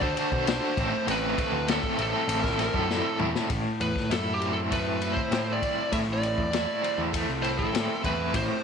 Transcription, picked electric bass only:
0.00 0.13 D2 medium
0.32 0.58 B1 medium
0.77 0.91 A1 medium
1.07 1.34 A1 loud
1.52 1.79 D2 medium
1.98 2.11 A1 medium
2.27 2.68 A1 loud
2.74 3.01 F#2 medium
3.20 3.33 E2 medium
3.50 3.63 A1 loud
3.80 3.93 E2 medium
4.10 5.17 F#2 medium
5.31 5.58 A2 medium
5.92 6.05 A2 loud
6.07 6.34 A1 medium
6.38 6.64 E2 medium
6.98 7.25 E2 medium
7.28 7.59 C2 medium
7.59 7.72 A1 medium
7.74 7.87 A2 medium
8.04 8.31 E2 loud
8.34 8.47 A1 loud

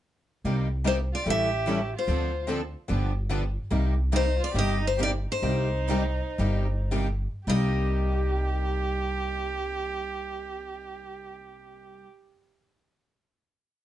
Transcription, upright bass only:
0.44 1.10 C2 medium
1.26 1.92 A1 medium
2.08 2.74 D2 medium
2.90 3.56 G1 medium
3.71 4.38 C2 medium
4.54 5.25 G1 medium
5.42 6.19 C2 medium
6.39 7.25 G1 medium
7.47 12.01 C2 medium

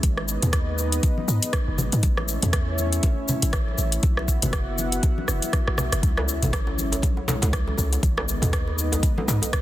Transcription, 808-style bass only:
0.03 0.38 G#1 loud
0.43 1.00 D#2 medium
1.28 1.40 G#2 loud
1.68 1.80 F#1 loud
1.78 1.90 G#1 medium
1.93 2.01 G#2 medium
2.03 2.38 A1 loud
2.43 3.00 E2 medium
3.43 3.75 A1 loud
3.78 3.99 A1 loud
4.03 4.38 B1 loud
4.43 5.00 F#1 loud
5.28 5.40 F#1 loud
5.68 5.80 A1 loud
5.78 5.90 B1 medium
5.92 6.01 F#1 medium
6.03 6.38 C#2 loud
6.42 7.00 G#1 medium
7.43 7.75 C#2 loud
7.78 7.99 C#2 loud
8.03 8.38 G#1 loud
8.42 9.00 D#2 medium
9.28 9.40 G#2 loud

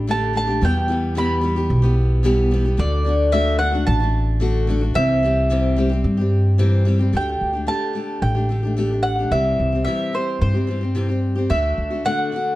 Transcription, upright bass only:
0.00 0.58 A1 medium
0.62 1.66 E2 medium
1.70 2.75 B1 medium
2.79 3.83 D2 medium
3.87 4.92 A1 loud
4.96 6.01 C2 medium
6.04 7.09 G2 medium
7.13 7.39 D2 medium
7.41 7.67 D2 medium
8.22 9.27 A1 medium
9.31 9.57 C2 medium
9.59 9.85 C2 medium
10.41 11.46 G2 medium
11.51 11.76 D2 medium
11.78 12.04 D2 medium

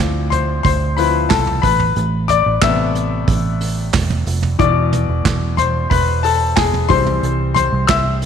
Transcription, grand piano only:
0.00 0.96 F3 medium
0.00 0.96 C4 medium
0.00 0.97 E4 medium
0.00 0.28 D5 medium
0.00 0.34 D6 loud
0.30 0.63 C5 medium
0.30 0.62 C6 medium
0.63 0.96 C5 medium
0.63 0.95 C6 loud
0.97 1.27 F3 medium
0.97 1.27 C4 soft
0.97 1.28 E4 medium
0.97 1.29 B4 medium
0.97 1.31 B5 medium
1.29 1.62 A4 medium
1.29 1.64 A5 medium
1.62 2.26 B4 medium
1.62 2.30 B5 loud
2.28 2.37 D5 medium
2.28 2.36 D6 loud
2.61 3.06 C3 medium
2.61 3.06 A3 soft
2.61 3.06 B3 medium
2.61 4.23 E5 medium
2.61 4.22 E6 medium
4.59 6.86 B2 medium
4.59 6.86 E3 medium
4.59 5.55 D5 medium
4.59 5.61 D6 loud
5.57 5.89 C5 medium
5.57 5.88 C6 medium
5.90 6.22 B4 medium
5.90 6.25 B5 medium
6.23 6.55 A4 medium
6.23 6.58 A5 medium
6.56 6.88 G#4 medium
6.56 6.90 G#5 medium
6.89 8.26 E3 medium
6.89 8.26 G3 medium
6.89 8.26 C4 medium
6.89 7.52 C5 medium
6.89 7.53 C6 loud
7.54 7.87 C5 medium
7.54 7.86 C6 loud
7.87 8.26 E5 medium
7.87 8.26 E6 loud

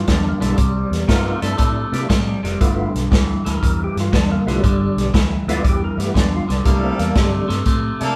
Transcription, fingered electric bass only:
0.08 0.32 E2 medium
0.41 0.53 B1 medium
0.58 0.82 C2 medium
0.91 1.03 E2 medium
1.09 1.33 G2 medium
1.42 1.54 G2 medium
1.59 1.83 A2 medium
1.92 2.04 C3 medium
2.10 2.34 A2 medium
2.43 2.55 F1 medium
2.61 2.85 G1 medium
2.94 3.06 B1 medium
3.12 3.36 D2 medium
3.46 3.57 D2 medium
3.63 3.86 E2 medium
3.96 4.08 G2 medium
4.13 4.37 E2 medium
4.46 4.58 C2 medium
4.64 4.88 G1 medium
4.96 5.08 B1 medium
5.14 5.38 D2 medium
5.47 5.59 D2 medium
5.65 5.89 E2 medium
5.97 6.09 G2 medium
6.15 6.39 E2 medium
6.49 6.60 C2 medium
6.66 6.90 C2 medium
6.99 7.10 E2 medium
7.15 7.40 G2 medium
7.50 7.61 G2 medium
7.66 7.90 A2 medium
8.01 8.12 C3 medium

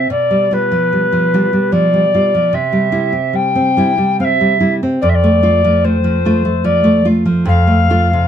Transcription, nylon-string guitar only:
0.10 2.50 B2 soft
0.31 0.50 G3 soft
0.51 0.70 G3 soft
0.51 0.71 F4 soft
0.71 1.04 F3 soft
0.93 1.25 G3 soft
1.12 1.45 F3 soft
1.34 1.51 G3 soft
1.34 1.52 F4 soft
1.53 1.85 G3 soft
1.72 2.05 F3 soft
1.94 2.13 G3 soft
2.14 2.32 G3 soft
2.14 2.32 F4 soft
2.35 2.55 F3 soft
2.53 4.98 C3 soft
2.72 2.91 G3 soft
2.92 3.12 G3 soft
2.92 3.12 E4 soft
3.12 3.48 C4 soft
3.33 3.69 G3 soft
3.55 3.90 C4 soft
3.77 3.97 G3 soft
3.77 3.97 E4 soft
3.98 4.32 G3 soft
4.20 4.53 C4 soft
4.41 4.59 G3 soft
4.60 4.79 G3 soft
4.60 4.79 E4 soft
4.83 5.03 C4 soft
5.03 7.43 F2 medium
5.24 5.42 A3 soft
5.43 5.61 A3 soft
5.43 5.62 F4 soft
5.64 5.96 F3 soft
5.84 6.16 A3 soft
6.04 6.36 F3 soft
6.25 6.43 A3 soft
6.25 6.43 F4 soft
6.45 6.77 A3 soft
6.64 6.97 F3 soft
6.84 7.04 A3 soft
7.05 7.24 A3 soft
7.05 7.24 F4 soft
7.26 7.47 F3 soft
7.45 8.28 F2 medium
7.67 7.89 A3 soft
7.90 8.11 A3 soft
7.90 8.11 F4 soft
8.13 8.28 C3 soft

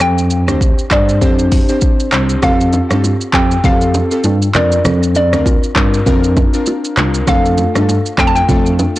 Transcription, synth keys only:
0.48 0.69 C4 medium
0.48 0.69 D4 medium
0.48 0.70 G4 medium
0.48 0.70 C5 medium
0.91 1.15 C4 medium
0.91 1.15 D4 medium
0.91 1.15 G4 medium
0.91 1.15 C5 medium
1.21 1.65 C4 loud
1.21 1.65 D4 medium
1.21 1.65 G4 medium
1.21 1.65 C5 loud
1.69 2.09 C4 medium
1.69 2.09 D4 medium
1.69 2.09 G4 medium
1.69 2.09 C5 medium
2.12 2.40 C4 medium
2.12 2.41 D4 medium
2.12 2.41 G4 medium
2.12 2.41 C5 medium
2.42 2.86 C4 loud
2.42 2.86 F4 medium
2.42 2.86 G4 medium
2.42 2.86 A4 loud
2.90 3.12 C4 medium
2.90 3.12 F4 medium
2.90 3.12 G4 medium
2.90 3.12 A4 medium
3.33 3.57 C4 medium
3.33 3.57 F4 medium
3.33 3.58 G4 medium
3.33 3.58 A4 medium
3.64 4.07 C4 loud
3.64 4.07 F4 medium
3.64 4.08 G4 medium
3.64 4.08 A4 loud
4.11 4.33 C4 medium
4.11 4.33 F4 medium
4.11 4.33 G4 medium
4.11 4.33 A4 medium
4.54 4.79 C4 medium
4.54 4.79 D4 medium
4.54 4.79 F4 medium
4.54 4.79 A#4 medium
5.33 5.54 C4 medium
5.33 5.54 D4 medium
5.33 5.54 F4 medium
5.33 5.55 A#4 medium
5.76 6.00 C4 medium
5.76 6.00 D4 medium
5.76 6.00 F4 medium
5.76 6.00 A#4 medium
6.06 6.50 C4 loud
6.06 6.50 D4 medium
6.06 6.50 F4 medium
6.06 6.50 A#4 loud
6.54 6.94 C4 medium
6.54 6.94 D4 medium
6.54 6.94 F4 medium
6.54 6.94 A#4 medium
6.97 7.25 C4 medium
6.97 7.25 D4 medium
6.97 7.25 F4 medium
6.97 7.26 A#4 medium
7.27 7.71 A3 loud
7.27 7.71 D4 medium
7.27 7.71 F4 medium
7.27 7.71 A4 loud
7.75 7.97 A3 medium
7.75 7.97 D4 medium
7.75 7.97 F4 medium
7.75 7.97 A4 medium
8.18 8.42 A3 medium
8.18 8.42 D4 medium
8.18 8.42 F4 medium
8.18 8.42 A4 medium
8.48 8.92 A3 loud
8.48 8.92 D4 medium
8.48 8.92 F4 medium
8.48 8.93 A4 loud

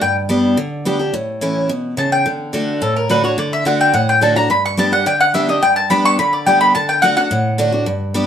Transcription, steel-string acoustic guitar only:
0.01 0.55 G2 medium
0.29 0.56 G3 medium
0.29 0.56 B3 medium
0.29 0.56 D4 medium
0.29 0.57 G4 medium
0.57 1.11 D3 medium
0.85 0.99 G3 medium
0.85 1.00 B3 medium
0.85 1.00 D4 medium
0.85 0.98 G4 medium
0.99 1.13 D4 medium
0.99 1.13 G4 medium
1.14 1.67 A2 medium
1.41 1.68 E3 medium
1.41 1.68 A3 medium
1.41 1.69 C#4 medium
1.41 1.69 E4 medium
1.69 1.96 B2 medium
1.97 2.24 C#3 medium
2.26 2.52 D3 medium
2.53 2.80 D3 medium
2.53 2.80 A3 medium
2.53 2.81 D4 medium
2.53 2.81 F#4 loud
2.82 3.35 A2 medium
3.09 3.23 D3 medium
3.09 3.24 A3 medium
3.09 3.24 D4 medium
3.09 3.23 F#4 medium
3.24 3.38 D4 soft
3.24 3.37 F#4 medium
3.38 3.64 D3 medium
3.65 3.92 D3 medium
3.65 3.93 A3 medium
3.65 3.93 D4 loud
3.65 3.93 F#4 medium
3.94 4.47 A2 medium
4.21 4.35 D3 medium
4.21 4.36 A3 medium
4.21 4.36 D4 loud
4.21 4.35 F#4 loud
4.36 4.50 D4 medium
4.36 4.49 F#4 medium
4.50 5.03 G2 medium
4.77 4.92 G3 medium
4.77 4.92 B3 medium
4.77 4.92 D4 loud
4.77 4.91 G4 loud
4.92 5.06 D4 soft
4.92 5.05 G4 medium
5.06 5.60 D3 medium
5.34 5.48 G3 medium
5.34 5.48 B3 medium
5.34 5.48 D4 medium
5.34 5.47 G4 medium
5.48 5.62 D4 soft
5.48 5.62 G4 medium
5.63 6.16 G2 medium
5.90 6.17 G3 medium
5.90 6.17 B3 medium
5.90 6.17 D4 medium
5.90 6.18 G4 medium
6.19 6.72 D3 medium
6.46 6.73 G3 medium
6.46 6.73 B3 medium
6.46 6.74 D4 medium
6.46 6.74 G4 medium
6.75 7.01 D3 medium
7.02 7.16 D3 medium
7.02 7.16 A3 medium
7.02 7.17 D4 medium
7.02 7.15 F#4 loud
7.17 7.30 D4 soft
7.17 7.30 F#4 medium
7.31 7.84 A2 medium
7.58 7.72 D3 medium
7.58 7.72 A3 medium
7.58 7.73 D4 loud
7.58 7.71 F#4 loud
7.72 7.86 D4 soft
7.72 7.86 F#4 medium
7.86 8.27 G2 medium
8.14 8.27 G3 medium
8.14 8.27 B3 medium
8.14 8.27 D4 medium
8.14 8.27 G4 medium

